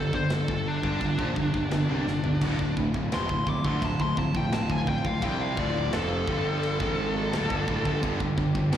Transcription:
Already playing: picked electric bass G1, distorted electric guitar G2, lead electric guitar A4
0.00 distorted electric guitar D3
0.13 picked electric bass G1, distorted electric guitar G2 D3, lead electric guitar C5, kick
0.30 picked electric bass G1, distorted electric guitar G2 D3, lead electric guitar A4, snare, china
0.48 picked electric bass G1, distorted electric guitar G2 D3, kick
0.68 lead electric guitar D4
0.83 picked electric bass G1, distorted electric guitar G2 D3, kick
1.01 picked electric bass G1, distorted electric guitar G2 D3, kick, china
1.18 picked electric bass A#1, distorted electric guitar A#2 F3, kick
1.36 picked electric bass G1, distorted electric guitar G2 D3, kick
1.54 picked electric bass G1, distorted electric guitar G2 D3, kick
1.71 picked electric bass G1, distorted electric guitar G2 D3, snare, china
1.89 picked electric bass C2, distorted electric guitar C3 G3
2.07 picked electric bass G1, distorted electric guitar G2 D3, snare
2.24 picked electric bass G1, distorted electric guitar G2 D3, floor tom
2.41 picked electric bass D1, distorted electric guitar D2 A2, string section F3 E4 F4, kick, china, crash
2.59 picked electric bass D1, distorted electric guitar D2 A2, kick
2.77 picked electric bass D1, distorted electric guitar D2 A2, kick
2.94 picked electric bass D1, distorted electric guitar D2 A2, kick
3.12 picked electric bass F1, distorted electric guitar F2 C3, lead electric guitar C6, snare, china
3.29 picked electric bass D1, distorted electric guitar D2 A2, kick
3.47 picked electric bass D1, distorted electric guitar D2 A2, lead electric guitar D6, kick
3.65 picked electric bass D2, distorted electric guitar D3 A3, lead electric guitar C6, kick
3.82 picked electric bass D1, distorted electric guitar D2 A2, lead electric guitar A5, kick, china
4.00 picked electric bass D1, distorted electric guitar D2 A2, lead electric guitar C6, kick
4.17 picked electric bass D1, distorted electric guitar D2 A2, lead electric guitar A5, kick
4.35 picked electric bass D1, distorted electric guitar D2 A2, lead electric guitar G5, kick
4.52 picked electric bass D1, distorted electric guitar D2 A2, lead electric guitar A5, snare, china
4.70 picked electric bass D1, distorted electric guitar D2 A2, lead electric guitar G#5, kick
4.87 picked electric bass D1, distorted electric guitar D2 A2, lead electric guitar G5, kick
5.05 picked electric bass D1, distorted electric guitar D2 A2, lead electric guitar F5, kick
5.22 picked electric bass C2, distorted electric guitar C3 G3 C4, lead electric guitar G5, kick, china
5.41 lead electric guitar F5
5.57 picked electric bass D1, distorted electric guitar D2 A2 D3, lead electric guitar D5, kick
5.93 picked electric bass F1, distorted electric guitar F2 C3 F3, lead electric guitar A4, snare, china
6.27 picked electric bass G1, distorted electric guitar G2 D3 G3, kick
6.63 china
6.80 picked electric bass G#1, distorted electric guitar G#2 D#3 G#3, kick
7.32 picked electric bass D1, distorted electric guitar D2 A2, snare, china
7.49 picked electric bass G1, distorted electric guitar G2 D3, kick
7.67 picked electric bass D1, distorted electric guitar D2 A2, kick
7.85 picked electric bass G1, distorted electric guitar G2 D3, kick
8.01 picked electric bass G1, distorted electric guitar G2 D3, string section G4, kick, china
8.20 picked electric bass G1, distorted electric guitar G2 D3, kick
8.37 picked electric bass G1, distorted electric guitar G2 D3, kick
8.55 picked electric bass G1, distorted electric guitar G2 D3, kick
8.72 picked electric bass A#1, distorted electric guitar A#2 F3, snare, china

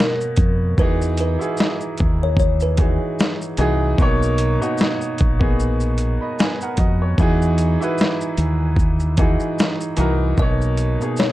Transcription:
Already playing: upright piano B2 A#3 B3 C#5 D#5 F#5, kalimba A#4
0.00 snare
0.21 shaker
0.36 fingered electric bass F2, kick, closed hi-hat, shaker
0.78 fingered electric bass E2, upright piano E3 D#4 F#4, kalimba B4, kick, shaker
0.83 upright piano G#4
1.02 shaker
1.18 kalimba B4, closed hi-hat, shaker
1.38 upright piano D#4 E4 F#4 G#4, shaker
1.57 kalimba D#5, snare, shaker
1.81 shaker
1.98 fingered electric bass D#2, kick, closed hi-hat, shaker
2.23 kalimba C#5
2.37 kalimba C#5, kick, shaker
2.60 kalimba B4, shaker
2.77 upright piano E3 D#4 F#4 G#4, kalimba G#4, kick, closed hi-hat, shaker
3.19 snare, shaker
3.42 shaker
3.57 fingered electric bass C2, upright piano E3 D#4 F#4 G#4, closed hi-hat, shaker
3.98 fingered electric bass B1, upright piano B2 A#3 D#4 C#5, kick, shaker
4.23 shaker
4.38 closed hi-hat, shaker
4.60 upright piano B2 A#3 D#4 F#4, shaker
4.78 snare, shaker
5.01 shaker
5.18 fingered electric bass A#1, kick, closed hi-hat, shaker
5.39 upright piano A#3 B3 D#4 G#4, kick
5.60 shaker
5.80 shaker
5.98 closed hi-hat, shaker
6.21 upright piano D#5 B5
6.39 upright piano B4 G#5, snare, shaker
6.61 upright piano A#4 F#5, shaker
6.77 fingered electric bass F2, upright piano F#4 D#5, kick, closed hi-hat, shaker
7.02 upright piano C#5
7.18 fingered electric bass E2, upright piano E3 D#4 F#4, kick, shaker
7.22 upright piano G#4
7.42 shaker
7.58 closed hi-hat, shaker
7.80 upright piano D#4 E4 F#4 B4, shaker
7.98 snare, shaker
8.21 shaker
8.38 fingered electric bass D#2, closed hi-hat, shaker
8.76 kick, shaker
9.00 shaker
9.17 upright piano E3 D#4 F#4 G#4, kick, closed hi-hat, shaker
9.40 shaker
9.59 snare, shaker
9.81 shaker
9.97 fingered electric bass C2, upright piano E3 D#4 F#4 A#4, closed hi-hat, shaker
10.38 fingered electric bass B1, upright piano B2 A#3 D#4, kalimba D#5, kick, shaker
10.42 upright piano C#5
10.62 shaker
10.77 closed hi-hat, shaker
11.00 upright piano B2 A#3 D#4 G#4, shaker
11.17 kalimba C#5, snare, shaker

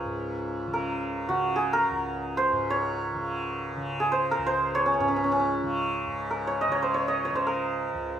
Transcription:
Already playing: tanpura C#2 G#2 C#3, santur F4 G#4 A#4 C#5
0.05 tanpura G#2
0.67 tanpura C#3
0.73 santur A#4
1.29 tanpura C#3, santur F#4
1.56 santur G#4
1.73 santur A#4
1.90 tanpura C#2
2.37 santur C5
2.52 tanpura G#2
2.70 santur C#5
3.15 tanpura C#3
3.76 tanpura C#3
4.00 santur G#4
4.12 santur C5
4.31 santur A#4
4.38 tanpura C#2
4.46 santur C5
4.75 santur C#5
4.86 santur C#4
4.94 santur C#4
5.00 tanpura G#2, santur C#4
5.08 santur C#4
5.16 santur C#4
5.24 santur C#4
5.32 santur C#4
5.40 santur C#4
5.63 tanpura C#3
6.07 tanpura G#2
6.31 santur A#4
6.47 santur C#5
6.61 santur D#5
6.68 tanpura C#3, santur C#5
6.82 santur C5
6.94 santur C#5
7.08 santur D#5
7.25 santur C#5
7.31 tanpura C#3, santur C5
7.47 santur A#4
7.94 tanpura C#2

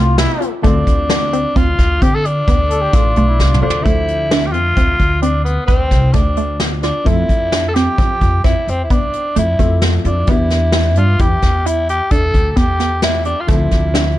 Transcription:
Already playing: upright bass C2, grand piano G3 E4 B4, synth arpeggio sound A3, flugelhorn F4
0.18 flugelhorn E4, snare, closed hi-hat
0.41 synth arpeggio sound F4, closed hi-hat
0.62 upright bass D2, grand piano D3 A3 F4, synth arpeggio sound A3, tenor saxophone D4, kick, closed hi-hat
0.66 grand piano C4
0.87 upright bass D2, kick, closed hi-hat
1.10 synth arpeggio sound D4, snare, closed hi-hat
1.33 synth arpeggio sound C4, closed hi-hat
1.56 upright bass D2, synth arpeggio sound C4, tenor saxophone F4, kick, closed hi-hat
1.79 upright bass D2, kick, snare, closed hi-hat
2.02 upright bass D3, synth arpeggio sound C4, tenor saxophone G4, kick, closed hi-hat
2.15 tenor saxophone A4
2.25 tenor saxophone D4, closed hi-hat
2.48 upright bass D2, synth arpeggio sound B3, kick, closed hi-hat
2.70 flugelhorn A4, closed hi-hat
2.81 flugelhorn G4
2.93 upright bass A1, synth arpeggio sound A3, flugelhorn F4, kick, closed hi-hat
3.16 upright bass B1, synth arpeggio sound A3, closed hi-hat
3.28 flugelhorn E4
3.39 upright bass C2, flugelhorn F4, snare
3.54 mid tom
3.61 upright bass D2, grand piano D3 A3 F4 C5, tenor saxophone D4, synth arpeggio sound F4
3.70 floor tom
3.82 grand piano D3 F3 A3, synth arpeggio sound A3, tenor saxophone E4, kick
3.86 upright bass D2, grand piano C5, closed hi-hat
4.08 closed hi-hat
4.31 synth arpeggio sound D4, snare, closed hi-hat
4.46 tenor saxophone G4
4.52 upright bass F2, synth arpeggio sound C4, tenor saxophone F4, closed hi-hat
4.77 upright bass D2, synth arpeggio sound C4, kick, closed hi-hat
5.00 upright bass D2, kick, closed hi-hat
5.22 synth arpeggio sound C4, tenor saxophone D4, closed hi-hat
5.45 tenor saxophone B3, closed hi-hat
5.66 upright bass D2, tenor saxophone C4, synth arpeggio sound B4, kick, closed hi-hat
5.91 upright bass C2, kick, snare, closed hi-hat
6.13 upright bass D2, synth arpeggio sound A3, tenor saxophone D4, kick, closed hi-hat
6.37 synth arpeggio sound A3, closed hi-hat
6.60 snare, closed hi-hat
6.83 tenor saxophone D4, synth arpeggio sound F4, snare, closed hi-hat
7.04 upright bass F2, grand piano F3 C4 E4, synth arpeggio sound A3, tenor saxophone E4, kick, closed hi-hat
7.08 grand piano A4
7.29 upright bass F2, kick, closed hi-hat
7.52 synth arpeggio sound D4, snare, closed hi-hat
7.68 tenor saxophone A4
7.75 synth arpeggio sound C4, tenor saxophone G4, snare, closed hi-hat
7.98 upright bass F3, synth arpeggio sound C4, kick, closed hi-hat
8.21 upright bass F2, kick, closed hi-hat
8.44 upright bass F2, synth arpeggio sound C4, tenor saxophone E4, kick, snare, closed hi-hat
8.67 upright bass F2, tenor saxophone C4, closed hi-hat
8.84 tenor saxophone E4
8.90 upright bass C2, synth arpeggio sound B3, tenor saxophone D4, kick, closed hi-hat
9.13 closed hi-hat
9.36 upright bass F2, synth arpeggio sound A3, tenor saxophone E4, closed hi-hat
9.59 upright bass F2, grand piano F3 C4 E4 A4, synth arpeggio sound A3, kick, closed hi-hat
9.82 snare, closed hi-hat
10.05 upright bass F2, tenor saxophone D4, synth arpeggio sound F4, closed hi-hat
10.27 upright bass E2, grand piano E3 B3 D4, synth arpeggio sound B3, tenor saxophone E4, kick, closed hi-hat
10.31 grand piano G4
10.50 snare, closed hi-hat
10.72 synth arpeggio sound E4, snare, closed hi-hat
10.95 upright bass G2, synth arpeggio sound D4, tenor saxophone F4, closed hi-hat
11.19 upright bass E2, synth arpeggio sound E4, tenor saxophone G4, kick, closed hi-hat
11.42 upright bass E2, kick, snare, closed hi-hat
11.66 synth arpeggio sound E4, tenor saxophone E4, closed hi-hat
11.89 tenor saxophone G4, closed hi-hat
12.11 upright bass E2, synth arpeggio sound D4, tenor saxophone A4, kick, closed hi-hat
12.34 upright bass D2, kick, closed hi-hat
12.50 tenor saxophone A4
12.56 upright bass E2, synth arpeggio sound B3, tenor saxophone G4, kick, snare, closed hi-hat
12.80 synth arpeggio sound B3, snare, closed hi-hat
13.02 tenor saxophone E4, snare, closed hi-hat
13.25 tenor saxophone D4, synth arpeggio sound G4, closed hi-hat
13.40 tenor saxophone F4
13.47 upright bass D2, grand piano D3 A3 C4, synth arpeggio sound A3, tenor saxophone E4, kick, closed hi-hat
13.51 grand piano F3
13.71 upright bass D2, kick, snare, closed hi-hat
13.94 synth arpeggio sound D4, snare, closed hi-hat

